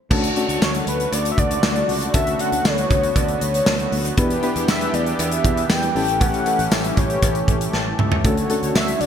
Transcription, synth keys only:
0.10 A3 C#4 D4 F#4 A4
0.36 A3 C#4 D4 F#4 A4
2.14 A3 C#4 D4 F#4 A4
2.39 A3 C#4 D4 F#4 A4
4.17 B3 D4 E4 G4 B4
4.42 B3 D4 E4 G4 B4
5.95 A3 C#4 E4 G4 A4
6.46 A3 C#4 E4 G4 A4
7.74 A5
7.99 E5
8.24 A3 C#4 D4 F#4 A4
8.49 A3 C#4 D4 F#4 A4

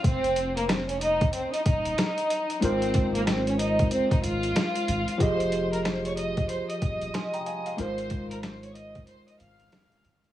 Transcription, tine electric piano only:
2.61 G#3 D#4 F4 A#4
2.65 C5
5.18 F3 F4 G4 G#4
5.22 D#5
7.14 G#5 C6
7.34 G5 A#5
7.46 F5 G#5
7.67 F5
7.77 G#3 D#4 F4 A#4
7.81 C5

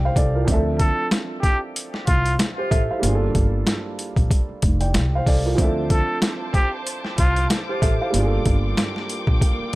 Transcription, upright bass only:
Already playing: C2
0.16 C2
0.48 D2
2.08 C2
2.71 A1
3.03 G1
3.35 G1
4.17 A#1
4.49 muted upright bass stroke
4.63 F1
4.95 C2
5.27 C2
5.58 D2
7.18 C2
7.82 A1
8.14 G1
8.46 G1
9.27 A#1
9.60 muted upright bass stroke

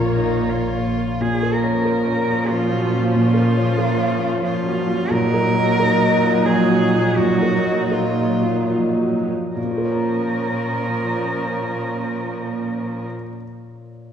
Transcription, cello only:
0.14 D#4
0.50 F4
1.21 G#4
1.53 A#4
2.49 F4
3.15 F4
4.43 F4
5.11 A#4
6.45 G#4
7.16 F#4
7.92 F4
9.55 A#4

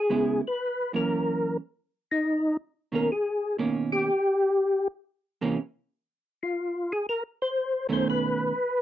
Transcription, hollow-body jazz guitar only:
0.10 C#3 G#3 B3 E4
0.93 F#2 E3 A#3 C#4
2.92 B2 D#3 A#3 C#4
3.58 B2 D#3 A#3 C#4
5.41 C3 E3 A#3 C#4
7.89 B2 D#3 A3 C#4

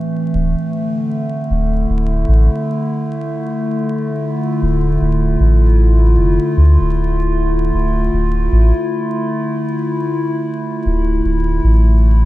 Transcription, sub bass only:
0.34 D1
1.50 D1
1.89 D1
2.28 A1
4.62 D1
5.01 D1
5.40 A1
6.18 F1
6.57 D2
6.80 D1
7.74 D1
8.13 D1
8.52 A1
10.86 D1
11.24 D1
11.64 A1

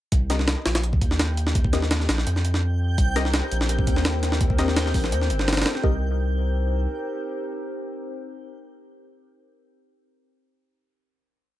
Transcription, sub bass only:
0.12 C2
0.66 A#1
1.01 D#2
2.09 A#1
2.27 F2
2.98 C2
3.52 A#1
3.87 D#2
4.94 A#1
5.12 D#2
5.30 G1
5.84 C2

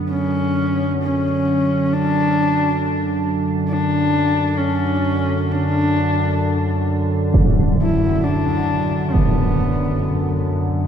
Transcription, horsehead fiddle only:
0.09 C#4
1.02 C#4
1.93 D4
3.68 D4
4.58 C#4
5.52 D4
7.82 E4
8.24 D4
9.13 B3

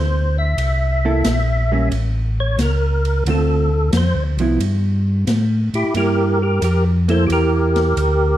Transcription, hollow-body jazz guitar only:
1.05 A#3 E4 A4
1.72 G3 A#3 C#4
3.27 D3 A3 C4 F4
4.40 F3 B3 E4
5.96 A#3 E4
7.08 A#3 E4

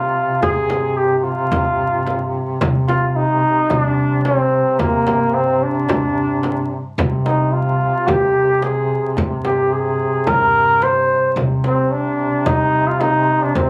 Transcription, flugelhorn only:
Already playing: F4
0.42 G#4
0.97 G4
1.18 G4
1.24 F4
2.89 F4
3.09 F4
3.16 D#4
3.71 D#4
3.83 D4
4.24 C#4
4.38 C4
4.80 A#3
5.35 C4
5.63 D4
7.26 D#4
7.53 F4
8.07 G4
8.63 G#4
9.45 G4
9.73 G#4
10.27 A#4
10.83 C5
11.66 C4
11.92 D4
12.47 D#4
12.88 F4
13.01 D#4
13.43 D4
13.56 C4

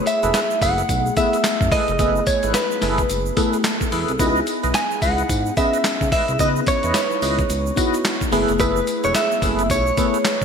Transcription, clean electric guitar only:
0.07 E5
0.62 F#5
1.17 E5
1.72 D#5
2.27 C#5
2.55 B4
4.75 G#5
5.02 F#5
5.57 E5
6.12 E5
6.40 D#5
6.68 C#5
8.60 B4
9.05 C#5
9.15 E5
9.71 C#5

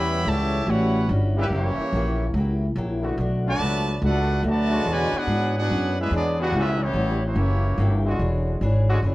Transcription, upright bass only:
Already playing: E2
0.25 C#2
0.67 A1
1.09 G1
1.50 F#1
1.77 muted upright bass stroke
1.93 A#1
2.34 C#2
2.75 A#1
3.17 B1
3.60 C#2
4.01 C#2
4.43 D2
4.85 E2
5.12 muted upright bass stroke
5.27 G#2
5.70 F#2
6.11 E2
6.53 C#2
6.94 A1
7.36 F#1
7.78 G1
8.19 E1
8.61 G#1
9.02 F#1

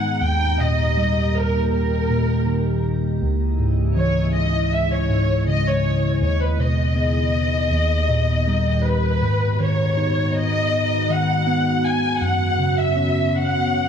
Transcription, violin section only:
Already playing: F#5
0.22 G5
0.60 D#5
1.36 A#4
1.73 A#4
3.97 C#5
4.36 D#5
4.73 E5
4.92 C#5
5.49 D#5
5.67 C#5
6.24 C#5
6.42 B4
6.61 D#5
8.86 B4
9.60 C#5
10.35 D#5
11.11 F#5
11.86 G#5
12.23 F#5
12.80 E5
13.35 F#5

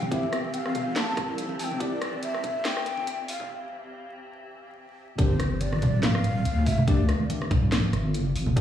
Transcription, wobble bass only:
Already playing: G1
0.75 G1
1.17 C2
1.60 C2
1.81 C2
2.44 G1
3.07 G1
5.19 G1
5.82 D1
6.45 D2
7.51 D1
7.93 G1
8.36 G1
8.57 G1

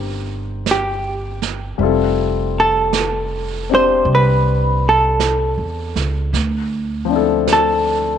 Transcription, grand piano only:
Already playing: G3 C4 C#4 E4 G4 A#4
1.78 G3 C4 E4 F4
1.83 A4
3.69 C4 D4 E4 G4
7.05 F3 C4
7.10 D4 E4
7.16 A4

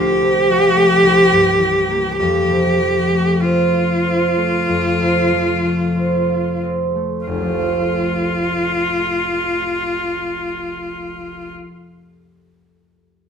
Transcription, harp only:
Already playing: C2 F3 A3
0.22 C3
0.49 F3
0.76 A3
1.02 C2
1.31 G2
1.59 E3
1.89 A#3
2.20 F2
2.50 C3
2.80 F3
3.11 A3
3.42 C4
3.73 F4
4.04 C4
4.37 A3
4.69 F2
5.01 C3
5.33 F3
5.65 A3
5.97 C4
6.30 F4
6.63 C4
6.96 A3
7.27 F1
7.34 C2
7.41 F3
7.48 A3
7.55 C4
7.62 F4

